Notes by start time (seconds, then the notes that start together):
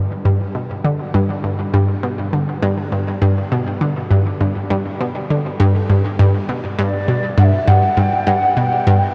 0.25 G2
0.55 B2
0.84 D3
1.14 G2
1.44 G2
1.74 G2
2.03 B2
2.33 D3
2.63 G2
2.92 G2
3.22 G2
3.52 B2
3.81 D3
4.11 G2
4.41 G2
4.70 G2
5.00 B2
5.30 D3
5.60 G2
5.89 G2
6.19 G2
6.49 B2
6.79 G2 D5
7.08 B2
7.38 G2 F#5
7.44 E5
7.68 G2 F#5
7.97 G2 G5
8.27 G2 F#5
8.57 B2 G5
8.87 G2